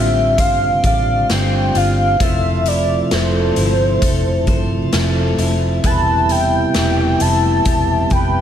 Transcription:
Already playing: fingered electric bass A1, tonewheel organ D3 G3 C4 F4, twelve-string acoustic guitar G3 F4 C5 D5, soft synth lead E5
0.38 fingered electric bass G1, twelve-string acoustic guitar C5, soft synth lead F5, kick, closed hi-hat
0.84 fingered electric bass A1, twelve-string acoustic guitar D5, soft synth lead F5, kick, closed hi-hat
1.30 fingered electric bass G1, twelve-string acoustic guitar C5, soft synth lead G5, snare, closed hi-hat
1.75 fingered electric bass G1, twelve-string acoustic guitar F4, soft synth lead F5, closed hi-hat
2.20 fingered electric bass F1, tonewheel organ C3 F3 A3 E4, twelve-string acoustic guitar F3 C5, soft synth lead E5, kick, closed hi-hat
2.66 twelve-string acoustic guitar E4, soft synth lead D5, closed hi-hat
3.11 fingered electric bass F1, twelve-string acoustic guitar A4, soft synth lead C5, snare, closed hi-hat
3.56 fingered electric bass G1, twelve-string acoustic guitar E4, closed hi-hat
4.02 fingered electric bass F1, twelve-string acoustic guitar A4, kick, closed hi-hat
4.47 fingered electric bass G1, twelve-string acoustic guitar C5, kick, closed hi-hat
4.93 fingered electric bass F1, twelve-string acoustic guitar A4, snare, closed hi-hat
5.38 fingered electric bass F1, twelve-string acoustic guitar E4, closed hi-hat
5.84 fingered electric bass E1, twelve-string acoustic guitar E3 B4, tonewheel organ G3 B3 E4, soft synth lead A5, kick, closed hi-hat
6.29 twelve-string acoustic guitar E4, soft synth lead G5, closed hi-hat
6.74 fingered electric bass E1, twelve-string acoustic guitar G4, snare, closed hi-hat
7.20 fingered electric bass F1, twelve-string acoustic guitar E4, soft synth lead A5, closed hi-hat
7.65 fingered electric bass E1, twelve-string acoustic guitar G4, kick, closed hi-hat
8.10 fingered electric bass F1, twelve-string acoustic guitar B4, soft synth lead G5, kick, closed hi-hat

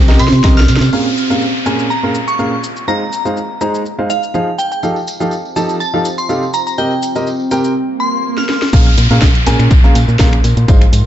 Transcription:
Already playing: fm bass C2, ambient pad C4 G4 C5
0.01 snare, tambourine
0.08 upright piano C3 C4 G4 A#4 D#5, snare, closed hi-hat, tambourine
0.11 snare
0.13 snare, tambourine
0.19 fm bass C3, synth bell C6, open hi-hat, tambourine
0.28 snare
0.32 fm bass C3, closed hi-hat, tambourine
0.43 fm bass C2, upright piano C3 C4 G4 A#4 D#5, kick, snare, closed hi-hat, tambourine
0.57 synth bell F6, snare, closed hi-hat, tambourine
0.60 snare
0.68 fm bass C3, snare, open hi-hat, tambourine
0.76 snare
0.81 fm bass C3, snare, closed hi-hat, tambourine
0.93 upright piano A#2 C#4 G#4 A#4 F5, ambient pad A#4, crash, downlifter, shaker
1.16 ambient pad F5, shaker
1.30 upright piano A#2 C#4 G#4 A#4 F5, shaker
1.42 shaker
1.60 ambient pad C6
1.66 upright piano A#2 C#4 G#4 A#4 G#5, shaker
1.79 shaker
1.90 synth bell A#5, shaker
2.03 upright piano A#2 C#4 G#4 A#4 F5
2.15 shaker
2.28 synth bell C#6, shaker
2.39 upright piano A#2 C#4 G#4 A#4 F5, shaker
2.64 shaker
2.77 shaker
2.88 upright piano G#3 D#4 G#4 C5 F5, ambient pad G#4, synth bell A#5, shaker
3.02 ambient pad D#5
3.10 ambient pad A#5, shaker
3.25 upright piano G#3 D#4 G#4 C5 F5, shaker
3.37 shaker
3.61 upright piano G#3 D#4 G#4 C5 A#5, shaker
3.74 shaker
3.86 shaker
3.99 upright piano G#3 D#4 G#4 C5 F5
4.10 synth bell F5, shaker
4.23 shaker
4.34 upright piano F3 D#4 G#4 C5 F5, shaker
4.58 ambient pad F4, synth bell G5, shaker
4.72 ambient pad C5, synth bell G5, shaker
4.83 upright piano F3 D#4 G4 A4 F5, tambourine, shaker
4.96 tambourine
5.07 tambourine, shaker
5.16 ambient pad G5
5.20 upright piano F3 D#4 G4 A4 F5, tambourine, shaker
5.31 tambourine, shaker
5.45 tambourine
5.56 upright piano F3 D#4 G4 A4 A5, tambourine, shaker
5.69 tambourine, shaker
5.80 synth bell A5, tambourine, shaker
5.94 upright piano F3 D#4 G4 A4 F5, tambourine
6.05 tambourine, shaker
6.18 synth bell C6, tambourine, shaker
6.29 upright piano C3 D#4 G4 A4 F5, tambourine, shaker
6.43 tambourine
6.54 synth bell A#5, tambourine, shaker
6.67 synth bell A#5, tambourine, shaker
6.78 upright piano C3 C4 G4 A#4 D#5, synth bell G5, tambourine, shaker
6.91 tambourine
7.03 tambourine, shaker
7.16 upright piano C3 C4 G4 A#4 D#5, tambourine, shaker
7.27 tambourine, shaker
7.40 tambourine
7.51 upright piano C3 C4 G4 A#4 G5, tambourine, shaker
7.64 tambourine, shaker
7.76 swell
8.00 synth bell C6
8.38 synth bell F6, snare
8.49 snare
8.62 snare
8.73 fm bass A#1, upright piano A#2 C#4 G#4 A#4 F5, ambient pad A#4, kick, closed hi-hat, crash, tambourine, downlifter, shaker
8.83 ambient pad F5, closed hi-hat, shaker
8.97 fm bass A#2, open hi-hat, tambourine, shaker
9.11 fm bass A#2, upright piano A#2 C#4 G#4 A#4 F5, ambient pad C6, snare, closed hi-hat, shaker
9.22 fm bass A#1, kick, snare, closed hi-hat, tambourine, shaker
9.35 closed hi-hat, shaker
9.46 fm bass A#2, upright piano A#2 C#4 G#4 A#4 G#5, open hi-hat, tambourine, shaker
9.59 fm bass A#2, finger snap, shaker
9.71 fm bass A#1, kick, closed hi-hat, tambourine, shaker
9.84 upright piano A#2 C#4 G#4 A#4 F5, snare, shaker
9.95 fm bass A#2, open hi-hat, tambourine, shaker
10.08 fm bass A#2, shaker
10.19 fm bass A#1, upright piano A#2 C#4 G#4 A#4 F5, kick, snare, closed hi-hat, tambourine, shaker
10.33 finger snap, shaker
10.44 fm bass A#2, open hi-hat, tambourine, shaker
10.57 fm bass A#2, closed hi-hat, shaker
10.68 fm bass G#1, upright piano G#3 D#4 G#4 C5 F5, ambient pad G#4, kick, closed hi-hat, tambourine, shaker
10.81 finger snap, closed hi-hat, shaker
10.93 fm bass G#2, open hi-hat, tambourine, shaker

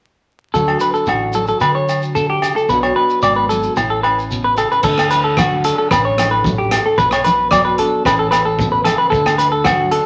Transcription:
0.54 fingered electric bass D2, nylon-string guitar D3 F#3 A3 D4 F#4, clean electric guitar A4, shekere
0.68 low agogo
0.80 nylon-string guitar A3, clean electric guitar B4, shekere
0.94 clean electric guitar A4, shekere
1.06 fingered electric bass A1, nylon-string guitar D4, clean electric guitar F#4, low agogo, shekere
1.33 nylon-string guitar F#3, clean electric guitar A4, shekere
1.47 clean electric guitar A4, shekere
1.61 fingered electric bass D3, clean electric guitar B4, low agogo, shekere
1.75 clean electric guitar C#5
1.89 nylon-string guitar F#4, low agogo, shekere
2.02 shekere
2.15 nylon-string guitar D3, clean electric guitar A4, shekere
2.30 clean electric guitar G4
2.42 nylon-string guitar C#3, low agogo, shekere
2.56 clean electric guitar A4, shekere
2.68 fingered electric bass B1, nylon-string guitar B2 F#3 B3 D4, clean electric guitar B4, shekere
2.72 nylon-string guitar F#4
2.83 clean electric guitar C#5, low agogo
2.96 nylon-string guitar B3, clean electric guitar B4
3.10 shekere
3.22 fingered electric bass G#1, nylon-string guitar D4, clean electric guitar D5, low agogo, shekere
3.36 clean electric guitar B4
3.49 nylon-string guitar F#3, clean electric guitar A4, shekere
3.63 shekere
3.76 fingered electric bass A1, nylon-string guitar A2 E4, muted clean electric guitar stroke, low agogo, shekere
3.90 clean electric guitar A4
4.03 nylon-string guitar C#4, clean electric guitar B4, low agogo
4.19 shekere
4.30 nylon-string guitar B2, shekere
4.44 clean electric guitar B4
4.57 nylon-string guitar C#3, clean electric guitar A4, low agogo, shekere
4.72 clean electric guitar B4, shekere
4.83 fingered electric bass D2, nylon-string guitar D3, clean electric guitar A4, kick, crash, muted conga, shekere
4.98 cross-stick, low agogo
5.11 clean electric guitar B4, closed hi-hat, muted conga, shekere
5.24 clean electric guitar A4
5.37 nylon-string guitar F#3, clean electric guitar F#4, kick, cross-stick, high conga, low agogo, shekere
5.64 nylon-string guitar D4, clean electric guitar A4, closed hi-hat, shekere
5.78 clean electric guitar A4
5.90 fingered electric bass A1, nylon-string guitar A2, clean electric guitar B4, kick, cross-stick, muted conga, low agogo, shekere
6.05 clean electric guitar C#5
6.17 nylon-string guitar A3, cross-stick, closed hi-hat, high conga, low agogo, shekere
6.31 clean electric guitar B4
6.44 nylon-string guitar F#3, kick, high conga, shekere
6.58 clean electric guitar G4
6.71 nylon-string guitar A4, cross-stick, closed hi-hat, muted conga, low agogo, shekere
6.86 clean electric guitar A4
6.98 fingered electric bass B1, nylon-string guitar B2, clean electric guitar B4, kick, muted conga, shekere
7.11 clean electric guitar C#5, cross-stick, low agogo
7.24 clean electric guitar B4, closed hi-hat, muted conga, high conga, shekere
7.51 nylon-string guitar F#3, clean electric guitar D5, kick, cross-stick, low agogo, shekere
7.65 clean electric guitar B4
7.78 nylon-string guitar D4, clean electric guitar A4, closed hi-hat
8.05 fingered electric bass A1, nylon-string guitar A2 E3 C#4 E4 A4, clean electric guitar B4, kick, cross-stick, low agogo, shekere
8.19 clean electric guitar A4
8.31 clean electric guitar B4, cross-stick, closed hi-hat, low agogo, shekere
8.45 clean electric guitar A4
8.57 nylon-string guitar B2, kick, high conga, low conga, shekere
8.72 clean electric guitar B4
8.85 nylon-string guitar C#3, clean electric guitar A4, cross-stick, closed hi-hat, muted conga, high conga, low agogo, shekere
8.98 clean electric guitar B4
9.10 fingered electric bass D2, nylon-string guitar D3, clean electric guitar A4, kick, shekere
9.26 cross-stick, low agogo
9.38 clean electric guitar B4, closed hi-hat, muted conga, shekere
9.52 clean electric guitar A4
9.64 nylon-string guitar F#3, clean electric guitar F#4, kick, cross-stick, high conga, low agogo, shekere
9.91 nylon-string guitar D4, clean electric guitar A4, closed hi-hat

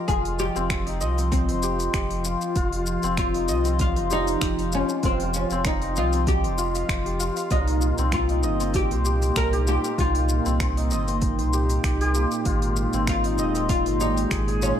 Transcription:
Already playing: analog synth pad F3 F4, santur C4 D#4 G4 C5 D#5
0.08 sub bass F1, santur F4, oud G#4, kick, open hi-hat, shaker
0.25 open hi-hat
0.39 oud G4, shaker
0.56 sub bass F1, santur C4, shaker
0.70 santur C4, finger snap, kick, open hi-hat, shaker
0.87 santur D#4, open hi-hat
1.01 sub bass C2, santur D#5, shaker
1.18 santur C4, open hi-hat, shaker
1.32 oud C4, kick, open hi-hat, shaker
1.49 sub bass F1, santur C5, open hi-hat
1.63 santur G4, shaker
1.80 open hi-hat, shaker
1.94 sub bass F1, santur G4, finger snap, kick, open hi-hat, shaker
2.11 open hi-hat
2.25 santur F4, shaker
2.41 shaker
2.56 sub bass F1, santur F4, kick, open hi-hat, shaker
2.72 open hi-hat
2.86 shaker
3.03 sub bass F1, santur C4, shaker
3.17 santur C4, oud F4, finger snap, kick, open hi-hat, shaker
3.34 santur D#4, open hi-hat
3.48 sub bass C2, santur D#5, shaker
3.65 santur C4, open hi-hat, shaker
3.79 oud F4, kick, open hi-hat, shaker
3.96 sub bass F1, santur C5, open hi-hat
4.11 oud D#4, santur G4, shaker
4.27 open hi-hat, shaker
4.41 sub bass F1, santur G4, finger snap, kick, open hi-hat, shaker
4.59 open hi-hat
4.72 oud C#4, santur F4, shaker
4.89 shaker
5.03 sub bass F1, oud C4, santur F4, kick, open hi-hat, shaker
5.20 open hi-hat
5.34 oud C#4, shaker
5.50 sub bass F1, santur C4, shaker
5.65 santur C4, oud D#4, finger snap, kick, open hi-hat, shaker
5.82 santur D#4, open hi-hat
5.96 sub bass C2, oud F4, santur D#5, shaker
6.13 santur C4, open hi-hat, shaker
6.27 oud G4, kick, open hi-hat, shaker
6.44 sub bass F1, santur C5, open hi-hat
6.58 santur F4, shaker
6.75 santur F5, open hi-hat, shaker
6.89 sub bass F1, santur C5, finger snap, kick, open hi-hat, shaker
7.06 santur G4, open hi-hat
7.20 santur F4, shaker
7.36 santur F5, open hi-hat, shaker
7.51 sub bass C2, analog synth pad A#2 A#3 D#4, oud D#4, santur F4, kick, open hi-hat, shaker
7.68 open hi-hat
7.81 shaker
7.98 sub bass C2, santur C4, shaker
8.12 santur C4, oud F4, finger snap, kick, open hi-hat, shaker
8.29 santur D#4, open hi-hat
8.43 sub bass G1, santur D#5, shaker
8.60 santur C4, open hi-hat, shaker
8.74 oud G4, kick, open hi-hat, shaker
8.91 sub bass C2, santur C5, open hi-hat
9.05 santur G4, shaker
9.22 open hi-hat, shaker
9.36 sub bass C2, oud A#4, finger snap, kick, open hi-hat, shaker
9.53 santur G4, open hi-hat
9.67 santur F4, oud G4, shaker
9.84 shaker
9.98 sub bass C2, santur F4, oud F4, kick, open hi-hat, shaker
10.15 open hi-hat
10.29 shaker
10.46 sub bass C2, santur C4, shaker
10.60 santur C4, finger snap, kick, open hi-hat, shaker
10.77 santur D#4, open hi-hat
10.91 sub bass G1, santur D#5, shaker
11.08 santur C4, open hi-hat, shaker
11.22 kick, open hi-hat, shaker
11.39 sub bass C2, santur C5, open hi-hat
11.53 santur G4, shaker
11.70 open hi-hat, shaker
11.84 sub bass C2, santur G4, finger snap, kick, open hi-hat, shaker
12.01 santur G4, open hi-hat
12.15 santur F4, shaker
12.32 shaker
12.45 sub bass G#1, analog synth pad G#3, santur F4, kick, open hi-hat, shaker
12.62 open hi-hat
12.76 shaker
12.93 sub bass G#1, santur C4, shaker
13.07 santur C4, oud F4, finger snap, kick, open hi-hat, shaker
13.24 santur D#4, open hi-hat
13.38 sub bass D#1, santur D#5, shaker
13.55 santur C4, open hi-hat, shaker
13.69 oud F4, kick, open hi-hat, shaker
13.86 sub bass G#1, santur C5, open hi-hat
14.00 oud D#4, santur G4, shaker
14.17 open hi-hat, shaker
14.31 sub bass G#1, santur G#4, finger snap, kick, open hi-hat, shaker
14.48 santur G#4, open hi-hat
14.62 oud C#4, santur F4, shaker

